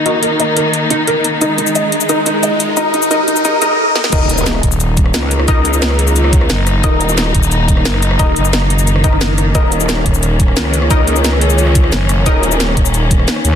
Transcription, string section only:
0.00 3.75 D#3 medium
0.00 1.39 A#3 medium
0.00 3.75 D#4 medium
1.41 3.76 G#3 medium
4.12 13.55 D#3 medium
4.12 13.55 A#3 medium
4.12 9.53 D#4 medium
9.55 13.55 C#4 medium

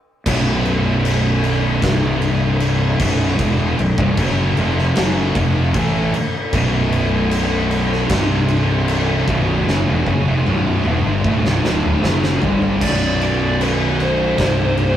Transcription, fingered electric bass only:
0.26 1.79 B0 medium
1.82 2.96 C1 loud
3.00 3.37 B0 medium
3.39 3.76 E1 loud
3.79 3.97 B0 medium
3.98 4.17 C1 loud
4.18 4.54 F#1 loud
4.58 4.94 F1 loud
4.97 5.33 F#1 medium
5.36 5.72 F1 medium
5.74 6.11 A1 loud
6.15 muted fingered electric bass stroke soft
6.53 8.06 B0 medium
8.10 9.24 C1 loud
9.28 9.65 B0 loud
9.69 9.86 F#1 loud
9.89 10.06 E1 loud
10.07 10.25 F#1 loud
10.28 10.45 F1 loud
10.48 10.84 B0 medium
10.87 11.04 E1 loud
11.06 11.24 G1 loud
11.24 11.43 D1 loud
11.46 11.63 C1 loud
11.65 12.01 D1 medium
12.04 12.40 F#1 medium
12.44 12.80 G1 medium
12.82 14.35 B0 medium
14.39 14.97 C1 loud

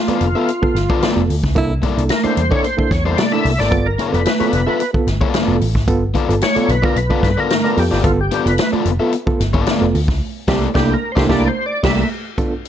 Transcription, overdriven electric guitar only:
0.08 0.26 B3 medium
0.08 0.26 F4 medium
0.08 0.25 A4 medium
0.08 0.25 D5 medium
0.35 0.49 B3 medium
0.35 0.49 F4 medium
0.35 0.48 A4 medium
0.35 0.48 E5 medium
0.90 1.01 B3 medium
0.90 1.02 F4 medium
0.90 1.02 A4 medium
0.90 1.02 D5 medium
1.02 1.20 B3 medium
1.02 1.20 F4 medium
1.02 1.20 A4 medium
1.02 1.21 D5 medium
1.82 2.00 A#3 medium
1.82 2.01 E4 medium
1.82 2.01 A4 medium
1.82 2.01 D5 loud
2.24 2.42 A#3 medium
2.24 2.41 E4 medium
2.24 2.41 A4 medium
2.24 2.41 D5 medium
2.51 2.65 A#3 medium
2.51 2.64 E4 medium
2.51 2.64 A4 medium
2.51 2.64 D5 medium
3.06 3.23 A#3 medium
3.06 3.23 E4 medium
3.06 3.22 A4 medium
3.06 3.22 D5 medium
3.32 3.50 A#3 medium
3.32 3.49 E4 medium
3.32 3.49 A4 medium
3.32 3.49 D5 medium
3.59 3.72 A#3 medium
3.59 3.72 E4 medium
3.59 3.72 A4 medium
3.59 3.72 D5 medium
3.99 4.19 B3 medium
3.99 4.20 F4 medium
3.99 4.20 A4 medium
3.99 4.20 D5 medium
4.40 4.61 B3 medium
4.40 4.61 F4 medium
4.40 4.60 A4 medium
4.40 4.60 D5 medium
4.67 4.81 B3 medium
4.67 4.80 F4 medium
4.67 4.80 A4 medium
4.67 4.80 E5 medium
5.21 5.32 B3 medium
5.21 5.33 F4 medium
5.21 5.34 A4 medium
5.21 5.34 D5 medium
5.33 5.54 B3 medium
5.33 5.55 F4 medium
5.33 5.55 A4 medium
5.33 5.55 D5 medium
6.14 6.32 B3 medium
6.14 6.33 F4 medium
6.14 6.33 A4 medium
6.14 6.33 D5 medium
6.55 6.74 B3 medium
6.55 6.73 F4 medium
6.55 6.73 A4 medium
6.55 6.72 D5 medium
6.82 6.97 B3 medium
6.82 6.96 F4 medium
6.82 6.96 A4 medium
6.82 6.95 D5 medium
7.10 7.28 B3 medium
7.10 7.28 F4 medium
7.10 7.27 A4 loud
7.10 7.27 D5 medium
7.37 7.51 B3 medium
7.37 7.51 F4 medium
7.37 7.50 A4 medium
7.37 7.50 D5 medium
7.64 7.82 B3 medium
7.64 7.81 F4 medium
7.64 7.81 A4 medium
7.64 7.81 D5 medium
7.91 8.05 B3 medium
7.91 8.04 F4 medium
7.91 8.04 A4 medium
7.91 8.04 D5 medium
8.32 8.49 B3 medium
8.32 8.50 F4 medium
8.32 8.50 A4 medium
8.32 8.50 D5 medium
8.73 8.90 B3 medium
8.73 8.90 F4 medium
8.73 8.90 A4 medium
8.73 8.89 D5 medium
9.00 9.13 B3 soft
9.00 9.13 F4 medium
9.00 9.13 A4 medium
9.00 9.12 E5 medium
9.53 9.65 B3 medium
9.53 9.65 F4 medium
9.53 9.66 A4 medium
9.53 9.66 D5 medium
9.66 9.84 B3 medium
9.66 9.84 F4 medium
9.66 9.85 A4 medium
9.66 9.85 D5 medium
10.48 10.67 A#3 loud
10.48 10.67 E4 loud
10.48 10.68 A4 loud
10.48 10.68 D5 loud
10.74 10.94 A#3 loud
10.74 10.94 E4 loud
10.74 10.94 A4 loud
10.74 10.93 D5 loud
11.16 11.28 A#3 loud
11.16 11.27 E4 loud
11.16 11.27 A4 loud
11.16 11.27 D5 medium
11.29 11.49 A#3 loud
11.29 11.49 E4 loud
11.29 11.49 A4 medium
11.29 11.48 D5 medium
11.84 12.03 A#3 loud
11.84 12.03 E4 loud
11.84 12.03 A4 loud
11.84 12.02 D5 loud

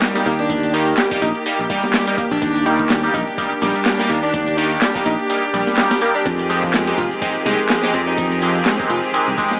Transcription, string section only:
0.00 2.38 D#3 medium
0.00 6.22 A#3 medium
0.00 9.60 G4 medium
2.42 6.22 D4 medium
6.26 9.60 D#3 medium
6.26 9.60 F3 medium
6.26 9.60 C4 medium
6.26 9.60 G#4 medium

